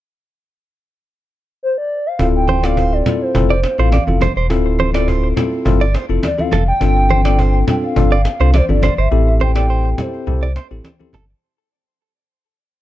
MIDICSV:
0, 0, Header, 1, 7, 480
1, 0, Start_track
1, 0, Key_signature, -1, "minor"
1, 0, Tempo, 576923
1, 1825, Time_signature, 4, 2, 24, 8
1, 10665, End_track
2, 0, Start_track
2, 0, Title_t, "Soft synth lead"
2, 0, Program_c, 0, 80
2, 1354, Note_on_c, 0, 72, 94
2, 1466, Note_off_c, 0, 72, 0
2, 1479, Note_on_c, 0, 74, 93
2, 1718, Note_on_c, 0, 77, 97
2, 1731, Note_off_c, 0, 74, 0
2, 1829, Note_off_c, 0, 77, 0
2, 1835, Note_on_c, 0, 77, 105
2, 1889, Note_off_c, 0, 77, 0
2, 1959, Note_on_c, 0, 79, 108
2, 2197, Note_on_c, 0, 77, 106
2, 2210, Note_off_c, 0, 79, 0
2, 2436, Note_on_c, 0, 74, 93
2, 2449, Note_off_c, 0, 77, 0
2, 2679, Note_on_c, 0, 72, 84
2, 2692, Note_off_c, 0, 74, 0
2, 2915, Note_off_c, 0, 72, 0
2, 2920, Note_on_c, 0, 72, 88
2, 3139, Note_off_c, 0, 72, 0
2, 3159, Note_on_c, 0, 77, 88
2, 3485, Note_off_c, 0, 77, 0
2, 5198, Note_on_c, 0, 74, 107
2, 5323, Note_on_c, 0, 77, 100
2, 5336, Note_off_c, 0, 74, 0
2, 5557, Note_off_c, 0, 77, 0
2, 5560, Note_on_c, 0, 79, 123
2, 6357, Note_off_c, 0, 79, 0
2, 6397, Note_on_c, 0, 79, 108
2, 6450, Note_off_c, 0, 79, 0
2, 6523, Note_on_c, 0, 77, 112
2, 7117, Note_on_c, 0, 72, 95
2, 7130, Note_off_c, 0, 77, 0
2, 7236, Note_off_c, 0, 72, 0
2, 7243, Note_on_c, 0, 74, 92
2, 7482, Note_on_c, 0, 76, 93
2, 7495, Note_off_c, 0, 74, 0
2, 7716, Note_off_c, 0, 76, 0
2, 7720, Note_on_c, 0, 76, 90
2, 7770, Note_off_c, 0, 76, 0
2, 7836, Note_on_c, 0, 79, 111
2, 8317, Note_on_c, 0, 72, 94
2, 8330, Note_off_c, 0, 79, 0
2, 9271, Note_off_c, 0, 72, 0
2, 10665, End_track
3, 0, Start_track
3, 0, Title_t, "Clean electric guitar"
3, 0, Program_c, 1, 27
3, 2071, Note_on_c, 1, 72, 79
3, 2195, Note_off_c, 1, 72, 0
3, 2195, Note_on_c, 1, 74, 85
3, 2311, Note_off_c, 1, 74, 0
3, 2311, Note_on_c, 1, 72, 76
3, 2471, Note_off_c, 1, 72, 0
3, 2916, Note_on_c, 1, 74, 76
3, 2991, Note_off_c, 1, 74, 0
3, 3157, Note_on_c, 1, 72, 84
3, 3232, Note_off_c, 1, 72, 0
3, 3271, Note_on_c, 1, 74, 84
3, 3353, Note_off_c, 1, 74, 0
3, 3511, Note_on_c, 1, 72, 81
3, 3593, Note_off_c, 1, 72, 0
3, 3637, Note_on_c, 1, 72, 85
3, 3712, Note_off_c, 1, 72, 0
3, 3992, Note_on_c, 1, 72, 85
3, 4074, Note_off_c, 1, 72, 0
3, 4117, Note_on_c, 1, 74, 79
3, 4231, Note_off_c, 1, 74, 0
3, 4231, Note_on_c, 1, 72, 80
3, 4391, Note_off_c, 1, 72, 0
3, 4836, Note_on_c, 1, 74, 79
3, 4951, Note_off_c, 1, 74, 0
3, 4951, Note_on_c, 1, 72, 80
3, 5033, Note_off_c, 1, 72, 0
3, 5431, Note_on_c, 1, 69, 79
3, 5513, Note_off_c, 1, 69, 0
3, 5912, Note_on_c, 1, 72, 80
3, 5994, Note_off_c, 1, 72, 0
3, 6036, Note_on_c, 1, 74, 83
3, 6151, Note_off_c, 1, 74, 0
3, 6151, Note_on_c, 1, 72, 77
3, 6311, Note_off_c, 1, 72, 0
3, 6756, Note_on_c, 1, 74, 81
3, 6832, Note_off_c, 1, 74, 0
3, 6995, Note_on_c, 1, 72, 81
3, 7071, Note_off_c, 1, 72, 0
3, 7110, Note_on_c, 1, 74, 86
3, 7192, Note_off_c, 1, 74, 0
3, 7350, Note_on_c, 1, 72, 76
3, 7433, Note_off_c, 1, 72, 0
3, 7475, Note_on_c, 1, 72, 82
3, 7551, Note_off_c, 1, 72, 0
3, 7831, Note_on_c, 1, 72, 90
3, 7913, Note_off_c, 1, 72, 0
3, 7955, Note_on_c, 1, 74, 77
3, 8031, Note_off_c, 1, 74, 0
3, 8070, Note_on_c, 1, 72, 80
3, 8230, Note_off_c, 1, 72, 0
3, 8675, Note_on_c, 1, 74, 74
3, 8751, Note_off_c, 1, 74, 0
3, 8792, Note_on_c, 1, 72, 77
3, 8874, Note_off_c, 1, 72, 0
3, 9273, Note_on_c, 1, 69, 77
3, 9354, Note_off_c, 1, 69, 0
3, 10665, End_track
4, 0, Start_track
4, 0, Title_t, "Tine electric piano"
4, 0, Program_c, 2, 4
4, 1823, Note_on_c, 2, 60, 93
4, 1824, Note_on_c, 2, 64, 85
4, 1826, Note_on_c, 2, 65, 86
4, 1828, Note_on_c, 2, 69, 104
4, 2159, Note_off_c, 2, 60, 0
4, 2160, Note_off_c, 2, 64, 0
4, 2161, Note_off_c, 2, 65, 0
4, 2161, Note_off_c, 2, 69, 0
4, 2188, Note_on_c, 2, 60, 74
4, 2190, Note_on_c, 2, 64, 71
4, 2191, Note_on_c, 2, 65, 70
4, 2193, Note_on_c, 2, 69, 83
4, 2516, Note_off_c, 2, 60, 0
4, 2517, Note_off_c, 2, 64, 0
4, 2518, Note_off_c, 2, 65, 0
4, 2519, Note_off_c, 2, 69, 0
4, 2544, Note_on_c, 2, 60, 71
4, 2547, Note_on_c, 2, 64, 64
4, 2548, Note_on_c, 2, 65, 68
4, 2549, Note_on_c, 2, 69, 81
4, 2766, Note_off_c, 2, 60, 0
4, 2767, Note_off_c, 2, 64, 0
4, 2768, Note_off_c, 2, 65, 0
4, 2769, Note_off_c, 2, 69, 0
4, 2783, Note_on_c, 2, 60, 92
4, 2785, Note_on_c, 2, 64, 84
4, 2786, Note_on_c, 2, 65, 87
4, 2788, Note_on_c, 2, 69, 103
4, 2938, Note_off_c, 2, 60, 0
4, 2939, Note_off_c, 2, 64, 0
4, 2939, Note_off_c, 2, 65, 0
4, 2940, Note_off_c, 2, 69, 0
4, 3149, Note_on_c, 2, 60, 73
4, 3150, Note_on_c, 2, 64, 68
4, 3152, Note_on_c, 2, 65, 70
4, 3154, Note_on_c, 2, 69, 87
4, 3296, Note_off_c, 2, 60, 0
4, 3297, Note_off_c, 2, 64, 0
4, 3298, Note_off_c, 2, 65, 0
4, 3298, Note_off_c, 2, 69, 0
4, 3388, Note_on_c, 2, 60, 80
4, 3390, Note_on_c, 2, 64, 72
4, 3392, Note_on_c, 2, 65, 68
4, 3393, Note_on_c, 2, 69, 86
4, 3536, Note_off_c, 2, 60, 0
4, 3536, Note_off_c, 2, 64, 0
4, 3537, Note_off_c, 2, 65, 0
4, 3538, Note_off_c, 2, 69, 0
4, 3743, Note_on_c, 2, 60, 95
4, 3744, Note_on_c, 2, 64, 89
4, 3746, Note_on_c, 2, 65, 86
4, 3747, Note_on_c, 2, 69, 106
4, 4079, Note_off_c, 2, 60, 0
4, 4079, Note_off_c, 2, 64, 0
4, 4080, Note_off_c, 2, 65, 0
4, 4081, Note_off_c, 2, 69, 0
4, 4107, Note_on_c, 2, 60, 77
4, 4110, Note_on_c, 2, 64, 72
4, 4111, Note_on_c, 2, 65, 69
4, 4113, Note_on_c, 2, 69, 84
4, 4436, Note_off_c, 2, 60, 0
4, 4438, Note_off_c, 2, 64, 0
4, 4438, Note_off_c, 2, 65, 0
4, 4439, Note_off_c, 2, 69, 0
4, 4463, Note_on_c, 2, 60, 75
4, 4464, Note_on_c, 2, 64, 68
4, 4467, Note_on_c, 2, 65, 68
4, 4468, Note_on_c, 2, 69, 83
4, 4686, Note_off_c, 2, 60, 0
4, 4686, Note_off_c, 2, 64, 0
4, 4687, Note_off_c, 2, 65, 0
4, 4688, Note_off_c, 2, 69, 0
4, 4701, Note_on_c, 2, 60, 91
4, 4703, Note_on_c, 2, 64, 81
4, 4705, Note_on_c, 2, 65, 88
4, 4707, Note_on_c, 2, 69, 100
4, 4857, Note_off_c, 2, 60, 0
4, 4858, Note_off_c, 2, 64, 0
4, 4859, Note_off_c, 2, 65, 0
4, 4860, Note_off_c, 2, 69, 0
4, 5068, Note_on_c, 2, 60, 73
4, 5070, Note_on_c, 2, 64, 69
4, 5071, Note_on_c, 2, 65, 70
4, 5073, Note_on_c, 2, 69, 84
4, 5215, Note_off_c, 2, 60, 0
4, 5216, Note_off_c, 2, 64, 0
4, 5217, Note_off_c, 2, 65, 0
4, 5218, Note_off_c, 2, 69, 0
4, 5307, Note_on_c, 2, 60, 78
4, 5310, Note_on_c, 2, 64, 71
4, 5311, Note_on_c, 2, 65, 69
4, 5312, Note_on_c, 2, 69, 83
4, 5455, Note_off_c, 2, 60, 0
4, 5456, Note_off_c, 2, 64, 0
4, 5457, Note_off_c, 2, 65, 0
4, 5458, Note_off_c, 2, 69, 0
4, 5664, Note_on_c, 2, 60, 96
4, 5665, Note_on_c, 2, 62, 84
4, 5666, Note_on_c, 2, 65, 86
4, 5668, Note_on_c, 2, 69, 104
4, 5999, Note_off_c, 2, 60, 0
4, 6000, Note_off_c, 2, 62, 0
4, 6001, Note_off_c, 2, 65, 0
4, 6002, Note_off_c, 2, 69, 0
4, 6029, Note_on_c, 2, 60, 75
4, 6031, Note_on_c, 2, 62, 69
4, 6032, Note_on_c, 2, 65, 69
4, 6034, Note_on_c, 2, 69, 84
4, 6357, Note_off_c, 2, 60, 0
4, 6358, Note_off_c, 2, 62, 0
4, 6358, Note_off_c, 2, 65, 0
4, 6360, Note_off_c, 2, 69, 0
4, 6384, Note_on_c, 2, 60, 75
4, 6386, Note_on_c, 2, 62, 70
4, 6387, Note_on_c, 2, 65, 66
4, 6389, Note_on_c, 2, 69, 79
4, 6606, Note_off_c, 2, 60, 0
4, 6607, Note_off_c, 2, 62, 0
4, 6608, Note_off_c, 2, 65, 0
4, 6608, Note_off_c, 2, 69, 0
4, 6623, Note_on_c, 2, 60, 92
4, 6625, Note_on_c, 2, 62, 85
4, 6626, Note_on_c, 2, 65, 88
4, 6628, Note_on_c, 2, 69, 104
4, 6778, Note_off_c, 2, 60, 0
4, 6779, Note_off_c, 2, 62, 0
4, 6779, Note_off_c, 2, 65, 0
4, 6780, Note_off_c, 2, 69, 0
4, 6988, Note_on_c, 2, 60, 73
4, 6989, Note_on_c, 2, 62, 69
4, 6991, Note_on_c, 2, 65, 73
4, 6993, Note_on_c, 2, 69, 83
4, 7135, Note_off_c, 2, 60, 0
4, 7136, Note_off_c, 2, 62, 0
4, 7137, Note_off_c, 2, 65, 0
4, 7138, Note_off_c, 2, 69, 0
4, 7228, Note_on_c, 2, 60, 77
4, 7229, Note_on_c, 2, 62, 72
4, 7231, Note_on_c, 2, 65, 73
4, 7233, Note_on_c, 2, 69, 88
4, 7375, Note_off_c, 2, 60, 0
4, 7376, Note_off_c, 2, 62, 0
4, 7377, Note_off_c, 2, 65, 0
4, 7378, Note_off_c, 2, 69, 0
4, 7584, Note_on_c, 2, 60, 91
4, 7586, Note_on_c, 2, 64, 87
4, 7587, Note_on_c, 2, 67, 85
4, 7588, Note_on_c, 2, 69, 101
4, 7919, Note_off_c, 2, 60, 0
4, 7920, Note_off_c, 2, 64, 0
4, 7921, Note_off_c, 2, 67, 0
4, 7922, Note_off_c, 2, 69, 0
4, 7949, Note_on_c, 2, 60, 75
4, 7950, Note_on_c, 2, 64, 69
4, 7952, Note_on_c, 2, 67, 70
4, 7953, Note_on_c, 2, 69, 83
4, 8277, Note_off_c, 2, 60, 0
4, 8277, Note_off_c, 2, 64, 0
4, 8278, Note_off_c, 2, 67, 0
4, 8279, Note_off_c, 2, 69, 0
4, 8303, Note_on_c, 2, 60, 76
4, 8304, Note_on_c, 2, 64, 67
4, 8306, Note_on_c, 2, 67, 66
4, 8308, Note_on_c, 2, 69, 79
4, 8526, Note_off_c, 2, 60, 0
4, 8526, Note_off_c, 2, 64, 0
4, 8527, Note_off_c, 2, 67, 0
4, 8528, Note_off_c, 2, 69, 0
4, 8542, Note_on_c, 2, 60, 87
4, 8544, Note_on_c, 2, 64, 82
4, 8546, Note_on_c, 2, 67, 84
4, 8548, Note_on_c, 2, 69, 105
4, 8697, Note_off_c, 2, 60, 0
4, 8698, Note_off_c, 2, 64, 0
4, 8699, Note_off_c, 2, 67, 0
4, 8700, Note_off_c, 2, 69, 0
4, 8908, Note_on_c, 2, 60, 80
4, 8910, Note_on_c, 2, 64, 71
4, 8911, Note_on_c, 2, 67, 71
4, 8914, Note_on_c, 2, 69, 81
4, 9055, Note_off_c, 2, 60, 0
4, 9056, Note_off_c, 2, 64, 0
4, 9057, Note_off_c, 2, 67, 0
4, 9058, Note_off_c, 2, 69, 0
4, 9149, Note_on_c, 2, 60, 78
4, 9150, Note_on_c, 2, 64, 69
4, 9152, Note_on_c, 2, 67, 70
4, 9154, Note_on_c, 2, 69, 88
4, 9296, Note_off_c, 2, 60, 0
4, 9297, Note_off_c, 2, 64, 0
4, 9298, Note_off_c, 2, 67, 0
4, 9298, Note_off_c, 2, 69, 0
4, 10665, End_track
5, 0, Start_track
5, 0, Title_t, "Sub bass"
5, 0, Program_c, 3, 38
5, 1825, Note_on_c, 3, 26, 110
5, 2512, Note_off_c, 3, 26, 0
5, 2786, Note_on_c, 3, 29, 102
5, 3042, Note_off_c, 3, 29, 0
5, 3150, Note_on_c, 3, 33, 95
5, 3319, Note_off_c, 3, 33, 0
5, 3389, Note_on_c, 3, 29, 92
5, 3558, Note_off_c, 3, 29, 0
5, 3630, Note_on_c, 3, 28, 91
5, 3746, Note_on_c, 3, 26, 109
5, 3758, Note_off_c, 3, 28, 0
5, 4432, Note_off_c, 3, 26, 0
5, 4706, Note_on_c, 3, 31, 101
5, 4963, Note_off_c, 3, 31, 0
5, 5070, Note_on_c, 3, 29, 88
5, 5151, Note_off_c, 3, 29, 0
5, 5424, Note_on_c, 3, 29, 95
5, 5594, Note_off_c, 3, 29, 0
5, 5666, Note_on_c, 3, 31, 103
5, 6352, Note_off_c, 3, 31, 0
5, 6625, Note_on_c, 3, 31, 100
5, 6882, Note_off_c, 3, 31, 0
5, 6989, Note_on_c, 3, 36, 89
5, 7158, Note_off_c, 3, 36, 0
5, 7229, Note_on_c, 3, 31, 84
5, 7398, Note_off_c, 3, 31, 0
5, 7470, Note_on_c, 3, 31, 87
5, 7551, Note_off_c, 3, 31, 0
5, 7585, Note_on_c, 3, 33, 110
5, 8272, Note_off_c, 3, 33, 0
5, 8545, Note_on_c, 3, 36, 100
5, 8802, Note_off_c, 3, 36, 0
5, 8911, Note_on_c, 3, 33, 88
5, 8992, Note_off_c, 3, 33, 0
5, 9264, Note_on_c, 3, 31, 103
5, 9433, Note_off_c, 3, 31, 0
5, 10665, End_track
6, 0, Start_track
6, 0, Title_t, "Cajon"
6, 1825, Note_on_c, 9, 36, 113
6, 1909, Note_off_c, 9, 36, 0
6, 1961, Note_on_c, 9, 38, 28
6, 2044, Note_off_c, 9, 38, 0
6, 2068, Note_on_c, 9, 38, 35
6, 2151, Note_off_c, 9, 38, 0
6, 2193, Note_on_c, 9, 38, 95
6, 2276, Note_off_c, 9, 38, 0
6, 2306, Note_on_c, 9, 36, 93
6, 2390, Note_off_c, 9, 36, 0
6, 2431, Note_on_c, 9, 38, 25
6, 2515, Note_off_c, 9, 38, 0
6, 2547, Note_on_c, 9, 38, 94
6, 2630, Note_off_c, 9, 38, 0
6, 2667, Note_on_c, 9, 38, 27
6, 2750, Note_off_c, 9, 38, 0
6, 2786, Note_on_c, 9, 36, 121
6, 2869, Note_off_c, 9, 36, 0
6, 2918, Note_on_c, 9, 38, 35
6, 3001, Note_off_c, 9, 38, 0
6, 3025, Note_on_c, 9, 38, 90
6, 3108, Note_off_c, 9, 38, 0
6, 3153, Note_on_c, 9, 38, 32
6, 3236, Note_off_c, 9, 38, 0
6, 3264, Note_on_c, 9, 38, 94
6, 3267, Note_on_c, 9, 36, 96
6, 3347, Note_off_c, 9, 38, 0
6, 3350, Note_off_c, 9, 36, 0
6, 3401, Note_on_c, 9, 38, 36
6, 3484, Note_off_c, 9, 38, 0
6, 3507, Note_on_c, 9, 38, 84
6, 3590, Note_off_c, 9, 38, 0
6, 3631, Note_on_c, 9, 38, 31
6, 3714, Note_off_c, 9, 38, 0
6, 3746, Note_on_c, 9, 36, 111
6, 3829, Note_off_c, 9, 36, 0
6, 3881, Note_on_c, 9, 38, 28
6, 3964, Note_off_c, 9, 38, 0
6, 3988, Note_on_c, 9, 38, 32
6, 4071, Note_off_c, 9, 38, 0
6, 4114, Note_on_c, 9, 38, 99
6, 4197, Note_off_c, 9, 38, 0
6, 4227, Note_on_c, 9, 36, 93
6, 4310, Note_off_c, 9, 36, 0
6, 4353, Note_on_c, 9, 38, 26
6, 4436, Note_off_c, 9, 38, 0
6, 4469, Note_on_c, 9, 38, 91
6, 4552, Note_off_c, 9, 38, 0
6, 4589, Note_on_c, 9, 38, 29
6, 4673, Note_off_c, 9, 38, 0
6, 4707, Note_on_c, 9, 36, 120
6, 4790, Note_off_c, 9, 36, 0
6, 4840, Note_on_c, 9, 38, 33
6, 4923, Note_off_c, 9, 38, 0
6, 4946, Note_on_c, 9, 38, 86
6, 5029, Note_off_c, 9, 38, 0
6, 5074, Note_on_c, 9, 38, 33
6, 5157, Note_off_c, 9, 38, 0
6, 5185, Note_on_c, 9, 38, 98
6, 5187, Note_on_c, 9, 36, 97
6, 5268, Note_off_c, 9, 38, 0
6, 5270, Note_off_c, 9, 36, 0
6, 5321, Note_on_c, 9, 38, 35
6, 5405, Note_off_c, 9, 38, 0
6, 5428, Note_on_c, 9, 38, 88
6, 5511, Note_off_c, 9, 38, 0
6, 5551, Note_on_c, 9, 38, 31
6, 5634, Note_off_c, 9, 38, 0
6, 5665, Note_on_c, 9, 36, 115
6, 5749, Note_off_c, 9, 36, 0
6, 5800, Note_on_c, 9, 38, 29
6, 5883, Note_off_c, 9, 38, 0
6, 5906, Note_on_c, 9, 38, 34
6, 5990, Note_off_c, 9, 38, 0
6, 6032, Note_on_c, 9, 38, 98
6, 6115, Note_off_c, 9, 38, 0
6, 6146, Note_on_c, 9, 36, 95
6, 6229, Note_off_c, 9, 36, 0
6, 6271, Note_on_c, 9, 38, 26
6, 6354, Note_off_c, 9, 38, 0
6, 6387, Note_on_c, 9, 38, 97
6, 6471, Note_off_c, 9, 38, 0
6, 6507, Note_on_c, 9, 38, 28
6, 6591, Note_off_c, 9, 38, 0
6, 6625, Note_on_c, 9, 36, 121
6, 6709, Note_off_c, 9, 36, 0
6, 6757, Note_on_c, 9, 38, 34
6, 6841, Note_off_c, 9, 38, 0
6, 6864, Note_on_c, 9, 38, 90
6, 6948, Note_off_c, 9, 38, 0
6, 6992, Note_on_c, 9, 38, 33
6, 7075, Note_off_c, 9, 38, 0
6, 7103, Note_on_c, 9, 38, 92
6, 7106, Note_on_c, 9, 36, 99
6, 7186, Note_off_c, 9, 38, 0
6, 7189, Note_off_c, 9, 36, 0
6, 7239, Note_on_c, 9, 38, 36
6, 7322, Note_off_c, 9, 38, 0
6, 7345, Note_on_c, 9, 38, 86
6, 7429, Note_off_c, 9, 38, 0
6, 7469, Note_on_c, 9, 38, 31
6, 7552, Note_off_c, 9, 38, 0
6, 7584, Note_on_c, 9, 38, 39
6, 7667, Note_off_c, 9, 38, 0
6, 7720, Note_on_c, 9, 38, 29
6, 7803, Note_off_c, 9, 38, 0
6, 7825, Note_on_c, 9, 38, 33
6, 7909, Note_off_c, 9, 38, 0
6, 7951, Note_on_c, 9, 38, 95
6, 8034, Note_off_c, 9, 38, 0
6, 8066, Note_on_c, 9, 38, 40
6, 8149, Note_off_c, 9, 38, 0
6, 8190, Note_on_c, 9, 38, 26
6, 8273, Note_off_c, 9, 38, 0
6, 8305, Note_on_c, 9, 38, 96
6, 8388, Note_off_c, 9, 38, 0
6, 8427, Note_on_c, 9, 38, 28
6, 8510, Note_off_c, 9, 38, 0
6, 8542, Note_on_c, 9, 38, 47
6, 8625, Note_off_c, 9, 38, 0
6, 8678, Note_on_c, 9, 38, 36
6, 8761, Note_off_c, 9, 38, 0
6, 8785, Note_on_c, 9, 38, 89
6, 8868, Note_off_c, 9, 38, 0
6, 9024, Note_on_c, 9, 38, 99
6, 9107, Note_off_c, 9, 38, 0
6, 9267, Note_on_c, 9, 38, 86
6, 9350, Note_off_c, 9, 38, 0
6, 10665, End_track
7, 0, Start_track
7, 0, Title_t, "Drums"
7, 2064, Note_on_c, 9, 63, 78
7, 2148, Note_off_c, 9, 63, 0
7, 2545, Note_on_c, 9, 64, 79
7, 2628, Note_off_c, 9, 64, 0
7, 2792, Note_on_c, 9, 64, 77
7, 2876, Note_off_c, 9, 64, 0
7, 3259, Note_on_c, 9, 63, 77
7, 3343, Note_off_c, 9, 63, 0
7, 3396, Note_on_c, 9, 63, 79
7, 3480, Note_off_c, 9, 63, 0
7, 3500, Note_on_c, 9, 63, 76
7, 3500, Note_on_c, 9, 64, 72
7, 3584, Note_off_c, 9, 63, 0
7, 3584, Note_off_c, 9, 64, 0
7, 3984, Note_on_c, 9, 63, 80
7, 4067, Note_off_c, 9, 63, 0
7, 4466, Note_on_c, 9, 64, 80
7, 4549, Note_off_c, 9, 64, 0
7, 4712, Note_on_c, 9, 64, 79
7, 4795, Note_off_c, 9, 64, 0
7, 5181, Note_on_c, 9, 63, 73
7, 5264, Note_off_c, 9, 63, 0
7, 5317, Note_on_c, 9, 63, 75
7, 5401, Note_off_c, 9, 63, 0
7, 5423, Note_on_c, 9, 63, 77
7, 5423, Note_on_c, 9, 64, 78
7, 5506, Note_off_c, 9, 63, 0
7, 5506, Note_off_c, 9, 64, 0
7, 5906, Note_on_c, 9, 63, 84
7, 5989, Note_off_c, 9, 63, 0
7, 6386, Note_on_c, 9, 64, 80
7, 6469, Note_off_c, 9, 64, 0
7, 6632, Note_on_c, 9, 64, 81
7, 6715, Note_off_c, 9, 64, 0
7, 7100, Note_on_c, 9, 63, 73
7, 7183, Note_off_c, 9, 63, 0
7, 7237, Note_on_c, 9, 63, 76
7, 7320, Note_off_c, 9, 63, 0
7, 7342, Note_on_c, 9, 63, 79
7, 7342, Note_on_c, 9, 64, 74
7, 7425, Note_off_c, 9, 63, 0
7, 7425, Note_off_c, 9, 64, 0
7, 7824, Note_on_c, 9, 63, 83
7, 7907, Note_off_c, 9, 63, 0
7, 8305, Note_on_c, 9, 64, 81
7, 8388, Note_off_c, 9, 64, 0
7, 8551, Note_on_c, 9, 64, 75
7, 8634, Note_off_c, 9, 64, 0
7, 9020, Note_on_c, 9, 63, 74
7, 9103, Note_off_c, 9, 63, 0
7, 9158, Note_on_c, 9, 63, 79
7, 9241, Note_off_c, 9, 63, 0
7, 9260, Note_on_c, 9, 63, 78
7, 9260, Note_on_c, 9, 64, 78
7, 9343, Note_off_c, 9, 63, 0
7, 9343, Note_off_c, 9, 64, 0
7, 10665, End_track
0, 0, End_of_file